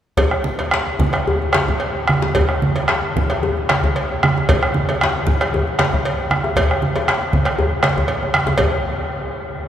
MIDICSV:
0, 0, Header, 1, 4, 480
1, 0, Start_track
1, 0, Tempo, 542495
1, 154, Time_signature, 4, 2, 24, 8
1, 2553, Tempo, 529568
1, 4953, Tempo, 513699
1, 6873, Tempo, 495868
1, 8898, End_track
2, 0, Start_track
2, 0, Title_t, "Bombo"
2, 151, Note_on_c, 9, 43, 91
2, 240, Note_off_c, 9, 43, 0
2, 277, Note_on_c, 9, 37, 68
2, 366, Note_off_c, 9, 37, 0
2, 631, Note_on_c, 9, 37, 89
2, 720, Note_off_c, 9, 37, 0
2, 877, Note_on_c, 9, 43, 86
2, 965, Note_off_c, 9, 43, 0
2, 1006, Note_on_c, 9, 37, 63
2, 1094, Note_off_c, 9, 37, 0
2, 1352, Note_on_c, 9, 37, 81
2, 1440, Note_off_c, 9, 37, 0
2, 1484, Note_on_c, 9, 43, 68
2, 1572, Note_off_c, 9, 43, 0
2, 1596, Note_on_c, 9, 37, 27
2, 1684, Note_off_c, 9, 37, 0
2, 1836, Note_on_c, 9, 37, 88
2, 1925, Note_off_c, 9, 37, 0
2, 1963, Note_on_c, 9, 37, 27
2, 2051, Note_off_c, 9, 37, 0
2, 2074, Note_on_c, 9, 43, 83
2, 2162, Note_off_c, 9, 43, 0
2, 2200, Note_on_c, 9, 37, 63
2, 2289, Note_off_c, 9, 37, 0
2, 2548, Note_on_c, 9, 37, 90
2, 2638, Note_off_c, 9, 37, 0
2, 2800, Note_on_c, 9, 43, 81
2, 2891, Note_off_c, 9, 43, 0
2, 3283, Note_on_c, 9, 37, 89
2, 3374, Note_off_c, 9, 37, 0
2, 3408, Note_on_c, 9, 43, 73
2, 3499, Note_off_c, 9, 43, 0
2, 3533, Note_on_c, 9, 37, 29
2, 3624, Note_off_c, 9, 37, 0
2, 3772, Note_on_c, 9, 37, 96
2, 3863, Note_off_c, 9, 37, 0
2, 3900, Note_on_c, 9, 37, 33
2, 3991, Note_off_c, 9, 37, 0
2, 4007, Note_on_c, 9, 43, 92
2, 4097, Note_off_c, 9, 43, 0
2, 4131, Note_on_c, 9, 37, 76
2, 4222, Note_off_c, 9, 37, 0
2, 4481, Note_on_c, 9, 37, 92
2, 4572, Note_off_c, 9, 37, 0
2, 4716, Note_on_c, 9, 43, 88
2, 4807, Note_off_c, 9, 43, 0
2, 4842, Note_on_c, 9, 37, 64
2, 4933, Note_off_c, 9, 37, 0
2, 5190, Note_on_c, 9, 37, 82
2, 5284, Note_off_c, 9, 37, 0
2, 5320, Note_on_c, 9, 43, 69
2, 5413, Note_off_c, 9, 43, 0
2, 5439, Note_on_c, 9, 37, 26
2, 5532, Note_off_c, 9, 37, 0
2, 5679, Note_on_c, 9, 37, 84
2, 5773, Note_off_c, 9, 37, 0
2, 5812, Note_on_c, 9, 37, 27
2, 5906, Note_off_c, 9, 37, 0
2, 5924, Note_on_c, 9, 43, 82
2, 6018, Note_off_c, 9, 43, 0
2, 6053, Note_on_c, 9, 37, 67
2, 6146, Note_off_c, 9, 37, 0
2, 6166, Note_on_c, 9, 37, 25
2, 6260, Note_off_c, 9, 37, 0
2, 6400, Note_on_c, 9, 37, 88
2, 6493, Note_off_c, 9, 37, 0
2, 6530, Note_on_c, 9, 37, 27
2, 6624, Note_off_c, 9, 37, 0
2, 6634, Note_on_c, 9, 43, 90
2, 6727, Note_off_c, 9, 43, 0
2, 6756, Note_on_c, 9, 37, 68
2, 6849, Note_off_c, 9, 37, 0
2, 7104, Note_on_c, 9, 37, 91
2, 7201, Note_off_c, 9, 37, 0
2, 7241, Note_on_c, 9, 37, 30
2, 7241, Note_on_c, 9, 43, 74
2, 7338, Note_off_c, 9, 37, 0
2, 7338, Note_off_c, 9, 43, 0
2, 7362, Note_on_c, 9, 37, 30
2, 7459, Note_off_c, 9, 37, 0
2, 7497, Note_on_c, 9, 37, 30
2, 7594, Note_off_c, 9, 37, 0
2, 7600, Note_on_c, 9, 37, 102
2, 7697, Note_off_c, 9, 37, 0
2, 7731, Note_on_c, 9, 37, 31
2, 7828, Note_off_c, 9, 37, 0
2, 7843, Note_on_c, 9, 43, 70
2, 7940, Note_off_c, 9, 43, 0
2, 8898, End_track
3, 0, Start_track
3, 0, Title_t, "Djembe"
3, 162, Note_on_c, 9, 64, 68
3, 250, Note_off_c, 9, 64, 0
3, 534, Note_on_c, 9, 62, 22
3, 534, Note_on_c, 9, 63, 50
3, 622, Note_off_c, 9, 62, 0
3, 622, Note_off_c, 9, 63, 0
3, 651, Note_on_c, 9, 62, 69
3, 740, Note_off_c, 9, 62, 0
3, 1022, Note_on_c, 9, 63, 56
3, 1111, Note_off_c, 9, 63, 0
3, 1128, Note_on_c, 9, 64, 67
3, 1217, Note_off_c, 9, 64, 0
3, 1257, Note_on_c, 9, 62, 23
3, 1346, Note_off_c, 9, 62, 0
3, 1366, Note_on_c, 9, 62, 73
3, 1455, Note_off_c, 9, 62, 0
3, 1491, Note_on_c, 9, 62, 21
3, 1491, Note_on_c, 9, 63, 55
3, 1580, Note_off_c, 9, 62, 0
3, 1580, Note_off_c, 9, 63, 0
3, 1967, Note_on_c, 9, 62, 53
3, 1967, Note_on_c, 9, 63, 55
3, 2056, Note_off_c, 9, 62, 0
3, 2056, Note_off_c, 9, 63, 0
3, 2084, Note_on_c, 9, 64, 68
3, 2173, Note_off_c, 9, 64, 0
3, 2445, Note_on_c, 9, 62, 22
3, 2445, Note_on_c, 9, 63, 53
3, 2534, Note_off_c, 9, 62, 0
3, 2534, Note_off_c, 9, 63, 0
3, 2555, Note_on_c, 9, 62, 69
3, 2645, Note_off_c, 9, 62, 0
3, 2939, Note_on_c, 9, 63, 56
3, 3030, Note_off_c, 9, 63, 0
3, 3047, Note_on_c, 9, 64, 65
3, 3137, Note_off_c, 9, 64, 0
3, 3175, Note_on_c, 9, 62, 21
3, 3266, Note_off_c, 9, 62, 0
3, 3286, Note_on_c, 9, 62, 73
3, 3377, Note_off_c, 9, 62, 0
3, 3416, Note_on_c, 9, 62, 22
3, 3416, Note_on_c, 9, 63, 55
3, 3507, Note_off_c, 9, 62, 0
3, 3507, Note_off_c, 9, 63, 0
3, 3903, Note_on_c, 9, 63, 51
3, 3994, Note_off_c, 9, 63, 0
3, 4011, Note_on_c, 9, 64, 66
3, 4101, Note_off_c, 9, 64, 0
3, 4378, Note_on_c, 9, 62, 21
3, 4378, Note_on_c, 9, 63, 53
3, 4469, Note_off_c, 9, 62, 0
3, 4469, Note_off_c, 9, 63, 0
3, 4500, Note_on_c, 9, 62, 72
3, 4591, Note_off_c, 9, 62, 0
3, 4850, Note_on_c, 9, 63, 53
3, 4941, Note_off_c, 9, 63, 0
3, 4961, Note_on_c, 9, 64, 66
3, 5055, Note_off_c, 9, 64, 0
3, 5084, Note_on_c, 9, 62, 21
3, 5177, Note_off_c, 9, 62, 0
3, 5194, Note_on_c, 9, 62, 68
3, 5287, Note_off_c, 9, 62, 0
3, 5328, Note_on_c, 9, 62, 21
3, 5328, Note_on_c, 9, 63, 53
3, 5421, Note_off_c, 9, 62, 0
3, 5421, Note_off_c, 9, 63, 0
3, 5801, Note_on_c, 9, 63, 52
3, 5895, Note_off_c, 9, 63, 0
3, 5924, Note_on_c, 9, 62, 21
3, 5924, Note_on_c, 9, 64, 65
3, 6017, Note_off_c, 9, 62, 0
3, 6017, Note_off_c, 9, 64, 0
3, 6045, Note_on_c, 9, 62, 19
3, 6139, Note_off_c, 9, 62, 0
3, 6162, Note_on_c, 9, 62, 21
3, 6256, Note_off_c, 9, 62, 0
3, 6287, Note_on_c, 9, 63, 53
3, 6380, Note_off_c, 9, 63, 0
3, 6405, Note_on_c, 9, 62, 67
3, 6499, Note_off_c, 9, 62, 0
3, 6769, Note_on_c, 9, 62, 22
3, 6862, Note_off_c, 9, 62, 0
3, 6871, Note_on_c, 9, 64, 67
3, 6968, Note_off_c, 9, 64, 0
3, 7115, Note_on_c, 9, 62, 66
3, 7212, Note_off_c, 9, 62, 0
3, 7250, Note_on_c, 9, 62, 21
3, 7250, Note_on_c, 9, 63, 56
3, 7347, Note_off_c, 9, 62, 0
3, 7347, Note_off_c, 9, 63, 0
3, 7363, Note_on_c, 9, 62, 20
3, 7460, Note_off_c, 9, 62, 0
3, 7494, Note_on_c, 9, 62, 23
3, 7591, Note_off_c, 9, 62, 0
3, 7723, Note_on_c, 9, 62, 51
3, 7723, Note_on_c, 9, 63, 55
3, 7820, Note_off_c, 9, 62, 0
3, 7820, Note_off_c, 9, 63, 0
3, 7841, Note_on_c, 9, 64, 71
3, 7937, Note_off_c, 9, 64, 0
3, 8898, End_track
4, 0, Start_track
4, 0, Title_t, "Drums"
4, 153, Note_on_c, 9, 63, 25
4, 153, Note_on_c, 9, 64, 77
4, 156, Note_on_c, 9, 56, 54
4, 242, Note_off_c, 9, 63, 0
4, 242, Note_off_c, 9, 64, 0
4, 244, Note_off_c, 9, 56, 0
4, 288, Note_on_c, 9, 63, 26
4, 376, Note_off_c, 9, 63, 0
4, 391, Note_on_c, 9, 63, 72
4, 479, Note_off_c, 9, 63, 0
4, 520, Note_on_c, 9, 56, 39
4, 609, Note_off_c, 9, 56, 0
4, 756, Note_on_c, 9, 63, 24
4, 845, Note_off_c, 9, 63, 0
4, 881, Note_on_c, 9, 63, 73
4, 881, Note_on_c, 9, 64, 71
4, 970, Note_off_c, 9, 63, 0
4, 970, Note_off_c, 9, 64, 0
4, 999, Note_on_c, 9, 56, 39
4, 1087, Note_off_c, 9, 56, 0
4, 1350, Note_on_c, 9, 56, 39
4, 1368, Note_on_c, 9, 63, 66
4, 1438, Note_off_c, 9, 56, 0
4, 1456, Note_off_c, 9, 63, 0
4, 1492, Note_on_c, 9, 63, 22
4, 1492, Note_on_c, 9, 64, 54
4, 1581, Note_off_c, 9, 63, 0
4, 1581, Note_off_c, 9, 64, 0
4, 1591, Note_on_c, 9, 56, 38
4, 1679, Note_off_c, 9, 56, 0
4, 1852, Note_on_c, 9, 63, 71
4, 1940, Note_off_c, 9, 63, 0
4, 2077, Note_on_c, 9, 56, 50
4, 2084, Note_on_c, 9, 63, 21
4, 2084, Note_on_c, 9, 64, 71
4, 2166, Note_off_c, 9, 56, 0
4, 2173, Note_off_c, 9, 63, 0
4, 2173, Note_off_c, 9, 64, 0
4, 2207, Note_on_c, 9, 63, 22
4, 2295, Note_off_c, 9, 63, 0
4, 2320, Note_on_c, 9, 63, 66
4, 2408, Note_off_c, 9, 63, 0
4, 2439, Note_on_c, 9, 56, 40
4, 2527, Note_off_c, 9, 56, 0
4, 2687, Note_on_c, 9, 63, 22
4, 2777, Note_off_c, 9, 63, 0
4, 2808, Note_on_c, 9, 63, 69
4, 2808, Note_on_c, 9, 64, 71
4, 2899, Note_off_c, 9, 63, 0
4, 2899, Note_off_c, 9, 64, 0
4, 2927, Note_on_c, 9, 56, 41
4, 3017, Note_off_c, 9, 56, 0
4, 3285, Note_on_c, 9, 56, 42
4, 3292, Note_on_c, 9, 63, 66
4, 3376, Note_off_c, 9, 56, 0
4, 3383, Note_off_c, 9, 63, 0
4, 3425, Note_on_c, 9, 63, 24
4, 3515, Note_off_c, 9, 63, 0
4, 3526, Note_on_c, 9, 56, 44
4, 3617, Note_off_c, 9, 56, 0
4, 3777, Note_on_c, 9, 63, 80
4, 3868, Note_off_c, 9, 63, 0
4, 4006, Note_on_c, 9, 56, 58
4, 4008, Note_on_c, 9, 63, 25
4, 4008, Note_on_c, 9, 64, 78
4, 4096, Note_off_c, 9, 56, 0
4, 4098, Note_off_c, 9, 63, 0
4, 4098, Note_off_c, 9, 64, 0
4, 4140, Note_on_c, 9, 63, 23
4, 4230, Note_off_c, 9, 63, 0
4, 4237, Note_on_c, 9, 63, 74
4, 4328, Note_off_c, 9, 63, 0
4, 4368, Note_on_c, 9, 56, 45
4, 4458, Note_off_c, 9, 56, 0
4, 4606, Note_on_c, 9, 63, 23
4, 4697, Note_off_c, 9, 63, 0
4, 4711, Note_on_c, 9, 63, 72
4, 4711, Note_on_c, 9, 64, 74
4, 4802, Note_off_c, 9, 63, 0
4, 4802, Note_off_c, 9, 64, 0
4, 4841, Note_on_c, 9, 56, 47
4, 4931, Note_off_c, 9, 56, 0
4, 5193, Note_on_c, 9, 56, 46
4, 5195, Note_on_c, 9, 63, 59
4, 5286, Note_off_c, 9, 56, 0
4, 5289, Note_off_c, 9, 63, 0
4, 5317, Note_on_c, 9, 63, 21
4, 5317, Note_on_c, 9, 64, 51
4, 5411, Note_off_c, 9, 63, 0
4, 5411, Note_off_c, 9, 64, 0
4, 5439, Note_on_c, 9, 56, 46
4, 5533, Note_off_c, 9, 56, 0
4, 5676, Note_on_c, 9, 63, 63
4, 5769, Note_off_c, 9, 63, 0
4, 5911, Note_on_c, 9, 64, 66
4, 5919, Note_on_c, 9, 56, 59
4, 6004, Note_off_c, 9, 64, 0
4, 6012, Note_off_c, 9, 56, 0
4, 6156, Note_on_c, 9, 63, 62
4, 6249, Note_off_c, 9, 63, 0
4, 6281, Note_on_c, 9, 63, 18
4, 6282, Note_on_c, 9, 56, 42
4, 6374, Note_off_c, 9, 63, 0
4, 6376, Note_off_c, 9, 56, 0
4, 6395, Note_on_c, 9, 63, 21
4, 6489, Note_off_c, 9, 63, 0
4, 6634, Note_on_c, 9, 63, 65
4, 6634, Note_on_c, 9, 64, 65
4, 6727, Note_off_c, 9, 63, 0
4, 6727, Note_off_c, 9, 64, 0
4, 6747, Note_on_c, 9, 56, 45
4, 6756, Note_on_c, 9, 63, 19
4, 6840, Note_off_c, 9, 56, 0
4, 6850, Note_off_c, 9, 63, 0
4, 6993, Note_on_c, 9, 63, 20
4, 7090, Note_off_c, 9, 63, 0
4, 7105, Note_on_c, 9, 56, 48
4, 7107, Note_on_c, 9, 63, 62
4, 7202, Note_off_c, 9, 56, 0
4, 7204, Note_off_c, 9, 63, 0
4, 7238, Note_on_c, 9, 64, 39
4, 7335, Note_off_c, 9, 64, 0
4, 7349, Note_on_c, 9, 56, 45
4, 7360, Note_on_c, 9, 64, 46
4, 7446, Note_off_c, 9, 56, 0
4, 7457, Note_off_c, 9, 64, 0
4, 7489, Note_on_c, 9, 64, 47
4, 7586, Note_off_c, 9, 64, 0
4, 7605, Note_on_c, 9, 63, 49
4, 7702, Note_off_c, 9, 63, 0
4, 7736, Note_on_c, 9, 63, 59
4, 7829, Note_on_c, 9, 56, 68
4, 7833, Note_off_c, 9, 63, 0
4, 7842, Note_on_c, 9, 64, 75
4, 7926, Note_off_c, 9, 56, 0
4, 7939, Note_off_c, 9, 64, 0
4, 8898, End_track
0, 0, End_of_file